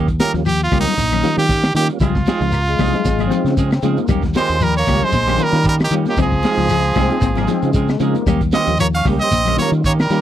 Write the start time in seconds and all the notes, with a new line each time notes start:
Already playing: D#2
0.08 muted clean electric guitar stroke, kick, closed hi-hat, shekere
0.20 D#3 G3 A#3 C#4 F4 G4 A#4, snare, closed hi-hat, high conga, shekere
0.34 D#2 F3, muted clean electric guitar stroke, snare, closed hi-hat, shekere
0.46 F3 G4, closed hi-hat, claves, shekere
0.60 F4, muted clean electric guitar stroke, closed hi-hat, shekere
0.71 C#2 D#3 G3 A#3 C#4 F4 G4, kick, open hi-hat, high conga, claves, shekere
0.81 D#4
0.86 muted clean electric guitar stroke, snare, low conga, shekere
0.98 A#1, muted clean electric guitar stroke, kick, closed hi-hat, high conga, shekere
1.12 D#3 C#4, muted clean electric guitar stroke, closed hi-hat, high conga, low conga, claves, shekere
1.23 D#3 G3 A#3 C#4 F4, muted clean electric guitar stroke, closed hi-hat, high conga, shekere
1.37 D#3 G4, snare, closed hi-hat, shekere
1.49 D#3 A#3 C#4 G4, kick, closed hi-hat, shekere
1.63 muted clean electric guitar stroke, snare, closed hi-hat, claves, shekere
1.75 D#3 G3 A#3 C#4 F4 G4, closed hi-hat, high conga, shekere
1.89 muted clean electric guitar stroke, closed hi-hat, shekere
2.00 C#2 F3 G3 G#3 C4 F4 G#4, kick, closed hi-hat, low conga, claves, shekere
2.14 muted clean electric guitar stroke, kick, snare, shekere
2.26 F3 G#3 C4 D#4 F4 G#4, snare, closed hi-hat, high conga, shekere
2.41 C#2 F3, muted clean electric guitar stroke, snare, closed hi-hat, shekere
2.52 A#3, muted clean electric guitar stroke, closed hi-hat, claves, shekere
2.67 G#3, muted clean electric guitar stroke, closed hi-hat, shekere
2.78 C2 F3 G3 G#3 C4 D#4 F4 G#4, muted clean electric guitar stroke, kick, snare, open hi-hat, high conga, claves, shekere
2.93 muted clean electric guitar stroke, snare, closed hi-hat, low conga, shekere
3.05 G#1, muted clean electric guitar stroke, kick, snare, closed hi-hat, shekere
3.19 F3 G#3 C4 G#4, closed hi-hat, high conga, low conga, claves, shekere
3.27 F3 C4
3.31 G#3 C4 D#4 F4, muted clean electric guitar stroke, closed hi-hat, high conga, shekere
3.44 C#3, snare, closed hi-hat, shekere
3.57 F3 G#3 C4 G#4, kick, closed hi-hat, shekere
3.66 C4
3.71 muted clean electric guitar stroke, snare, closed hi-hat, claves, shekere
3.82 C#3 F3 G#3 C4 D#4 F4 G#4, muted clean electric guitar stroke, closed hi-hat, high conga, shekere
3.93 A#3
3.97 muted clean electric guitar stroke, closed hi-hat, high conga, shekere
4.08 D#2 D#3 G3 A#3 C#4 G4, kick, closed hi-hat, low conga, claves, shekere
4.22 muted clean electric guitar stroke, kick, snare, closed hi-hat, shekere
4.34 D#3 G#3 A#3 C#4 F4 G4 C5, snare, closed hi-hat, high conga, shekere
4.48 D#2, muted clean electric guitar stroke, snare, closed hi-hat, shekere
4.60 F3 G3 A#4, closed hi-hat, claves, shekere
4.74 C#5, muted clean electric guitar stroke, closed hi-hat, shekere
4.78 A#3
4.86 C#2 D#3 G3 A#3 C#4 F4 G4, kick, open hi-hat, high conga, claves, shekere
5.01 C5, muted clean electric guitar stroke, low conga, shekere
5.05 G#3
5.12 A#1, muted clean electric guitar stroke, kick, snare, closed hi-hat, high conga, shekere
5.27 D#3 A#3 C#4 G4, snare, closed hi-hat, high conga, low conga, claves, shekere
5.38 D#3 A#3 C#4 F4 A#4, muted clean electric guitar stroke, snare, closed hi-hat, high conga, shekere
5.43 G3 A#4
5.53 D#3, snare, closed hi-hat, shekere
5.64 D#3 A#3 C#4 G4, kick, closed hi-hat, shekere
5.69 G3 A#4
5.79 D#3, muted clean electric guitar stroke, snare, closed hi-hat, claves, shekere
5.84 G4
5.90 D#3 G3 A#3 C#4 F4 G4, closed hi-hat, high conga, shekere
6.05 muted clean electric guitar stroke, snare, closed hi-hat, high conga, shekere
6.10 D#3 G4
6.16 C#2 G#3 C4 G#4, muted clean electric guitar stroke, kick, closed hi-hat, low conga, claves, shekere
6.22 F3 G#4
6.32 muted clean electric guitar stroke, kick, shekere
6.43 F3 G#3 C4 D#4 F4 G#4, snare, closed hi-hat, high conga, shekere
6.57 C#2 F3, muted clean electric guitar stroke, snare, closed hi-hat, shekere
6.69 F3 G#3, closed hi-hat, claves, shekere
6.83 muted clean electric guitar stroke, closed hi-hat, shekere
6.95 C2 F3 G3 G#3 C4 D#4 F4 G#4, kick, open hi-hat, high conga, claves, shekere
7.10 muted clean electric guitar stroke, closed hi-hat, shekere
7.21 G#1 C4, muted clean electric guitar stroke, kick, closed hi-hat, high conga, shekere
7.36 F3 G#3 A#3 C4 G#4, snare, closed hi-hat, high conga, low conga, claves, shekere
7.47 F3 G#3 C4 D#4 F4, muted clean electric guitar stroke, snare, closed hi-hat, high conga, shekere
7.62 C#3, closed hi-hat, shekere
7.73 F3 G#3 C4 G#4, kick, closed hi-hat, shekere
7.88 muted clean electric guitar stroke, snare, closed hi-hat, claves, shekere
8.00 C#3 F3 G#3 A#3 C4 D#4 F4 G#4, muted clean electric guitar stroke, closed hi-hat, shekere
8.15 muted clean electric guitar stroke, closed hi-hat, high conga, shekere
8.26 D#2 D#3 G3 A#3 C#4 G4, kick, closed hi-hat, low conga, claves, shekere
8.41 muted clean electric guitar stroke, kick, closed hi-hat, shekere
8.52 D#3 G3 A#3 C4 C#4 F4 G4 D#5, snare, closed hi-hat, high conga, shekere
8.67 D#2 F3, shekere
8.79 F3 A#3 C#5, closed hi-hat, claves, shekere
8.93 C#4 F5, muted clean electric guitar stroke, shekere
9.05 C#2 D#3 G3 A#3 C#4 G4, kick, open hi-hat, high conga, claves, shekere
9.20 C4 D#5, muted clean electric guitar stroke, shekere
9.31 A#1, muted clean electric guitar stroke, kick, closed hi-hat, high conga, shekere
9.45 D#3 A#3 C#4 G4, high conga, low conga, claves, shekere
9.57 D#3 G3 A#3 C#4 F4 C#5, muted clean electric guitar stroke, snare, closed hi-hat, high conga, shekere
9.72 D#3, closed hi-hat, shekere
9.84 D#3 A#3 C#4 G4 C#5, kick, closed hi-hat, shekere
9.99 G3 A#4, muted clean electric guitar stroke, snare, closed hi-hat, claves, shekere
10.10 D#3 G3 A#3 C#4 F4 G4, closed hi-hat, shekere